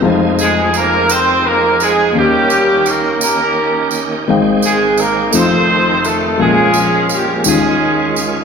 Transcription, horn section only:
\new Staff \with { instrumentName = "Horn section" } { \time 6/8 \key f \minor \tempo 4. = 57 << { r8 <aes aes'>8 <bes bes'>8 <c' c''>8 <bes bes'>8 <aes aes'>8 | <g g'>4 <bes bes'>8 <bes bes'>4 r8 | r8 <aes aes'>8 <bes bes'>8 <c' c''>4 <a a'>8 | <aes aes'>4 <g g'>8 <aes aes'>4 r8 | } \\ { r2. | <bes des'>4. <des' g'>4. | r4. <ees' a'>4. | <des' f'>4. <des' f'>4. | } >> }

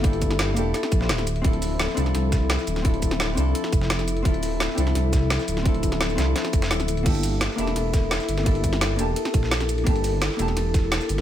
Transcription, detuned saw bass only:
\new Staff \with { instrumentName = "Detuned saw bass" } { \clef bass \time 4/4 \key g \dorian \tempo 4 = 171 g,,4. e,,8 r8 bes,,8 d,,4 | d,,4 r8 c,8 c,4 r8 d,,8~ | d,,4. c,8 r8 f,,4. | d,,4 r8 c,8 c,4 r8 d,,8~ |
d,,4. c,8 r8 f,,8 d,,4 | g,,4 r8 e,,8 e,,4 r8 g,,8~ | g,,4. e,,8 r8 bes,,4. | g,,4 r8 e,,8 e,,4 r8 g,,8 | }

